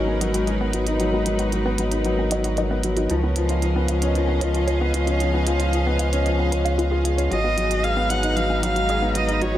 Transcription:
Already playing: G#1 F#3 G#3 B3 C#4 D#4 F#4 G#4 A#4 B4
0.08 B3 G#5
0.21 F#3 D#5, closed hi-hat
0.34 F#4, closed hi-hat
0.47 F#3 D#5, closed hi-hat
0.61 B3
0.73 F#3 F#4, closed hi-hat
0.87 D#4 F#4, closed hi-hat
1.00 F#3 F#4, closed hi-hat
1.13 B3 F#4
1.26 F#3, closed hi-hat
1.39 F#4, closed hi-hat
1.52 F#3, closed hi-hat
1.65 B3
1.78 F#3 F#5, closed hi-hat
1.92 D#4, closed hi-hat
2.05 F#3, closed hi-hat
2.18 B3 G#5
2.31 F#3 D#5, closed hi-hat
2.44 F#4, closed hi-hat
2.57 F#3 D#5, closed hi-hat
2.70 B3 F#5
2.83 F#3 F#4, closed hi-hat
2.97 D#4 F#4, closed hi-hat
3.10 C#2 F3 C#4 F4, closed hi-hat
3.23 B3 F4
3.36 F3, closed hi-hat
3.40 G#4 D#5 F5
3.49 F4, closed hi-hat
3.62 F3, closed hi-hat
3.76 B3
3.88 F3 F5, closed hi-hat
4.02 C#4, closed hi-hat
4.15 F3, closed hi-hat
4.28 B3 G#5
4.41 F3 C#5, closed hi-hat
4.55 F4, closed hi-hat
4.67 F3 C#5, closed hi-hat
4.80 B3 F5
4.94 F3 F4, closed hi-hat
5.07 C#4 F4, closed hi-hat
5.20 F3 F4, closed hi-hat
5.34 B3 F4
5.47 F3, closed hi-hat
5.60 F4, closed hi-hat
5.73 F3, closed hi-hat
5.86 B3
5.99 F3 F5, closed hi-hat
6.13 C#4, closed hi-hat
6.26 F3, closed hi-hat
6.39 B3 G#5
6.51 C#4 B4, closed hi-hat
6.65 C#4 F5, closed hi-hat
6.78 B3 F4, closed hi-hat
6.91 F4 G#4
7.04 F4 G#4, closed hi-hat
7.17 C#4 C#5, closed hi-hat
7.30 G#1 F#3 G#3 F#4 D#5, closed hi-hat
7.44 B3 F#4 B4
7.51 D#4
7.57 F#3, closed hi-hat
7.71 F#4, closed hi-hat
7.83 G#4 F5, closed hi-hat
7.96 B3
8.09 F#3 F#5, closed hi-hat
8.15 A#5
8.23 D#4, closed hi-hat
8.36 F#3 F5, closed hi-hat
8.50 B3 G#5
8.62 F#3 D#5 F5, closed hi-hat
8.76 F#4, closed hi-hat
8.89 G#4 D#5, closed hi-hat
9.02 B3 F#5
9.15 F#3 F#4 D#5, closed hi-hat
9.28 D#4 F#4, closed hi-hat
9.42 F#3 F#4 C#5, closed hi-hat
9.55 F#4

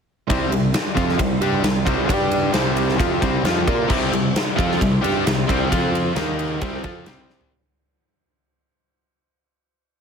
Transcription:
0.29 C2 C3 G3 C4 G4 E5 C6, kick, ride
0.50 C2 C3 G3, ride
0.74 snare, ride
0.95 F2 F3 C4 F4, kick, ride
1.09 snare
1.18 C2 C3 G3, kick, ride
1.40 G2 G3 D4 G4, ride
1.62 C2 C3 G3, snare, ride
1.85 C2 C3 G3 C4, kick, ride
2.06 G2 G3 D4 G4 D5 D6, kick, ride
2.32 ride
2.52 C2 C3 G3 C4 E5 C6, snare, ride
2.77 ride
2.89 snare
2.97 F2 F3 C4 F4, kick, ride
3.21 C2 C3 G3 C4, kick, ride
3.43 F2 F3 C4 F4, snare, ride
3.67 A#2 A#3 F4 A#4, kick, ride
3.89 C2 C3 G3 C4, kick, crash
4.12 C2 C3 G3, ride
4.36 snare, ride
4.56 F2 F3 C4 F4, kick, ride
4.72 snare
4.79 C2 C3 G3, kick, ride
5.01 G2 G3 D4 G4, ride
5.25 C2 C3 G3, snare, ride
5.48 C2 C3 G3 C4, kick, ride
5.70 F2 F3 C4 F4 C5, kick, ride
5.95 ride
6.15 D#2 D#3 A#3 D#4 A#4 A#5, snare, ride
6.39 ride
6.61 C2 C3 G3 C4 E4 C5 G5, kick, ride
6.84 F2 F3 C4 F4, kick, ride
7.05 C2 C3 G3 C4, snare, ride
7.30 snare
7.41 floor tom

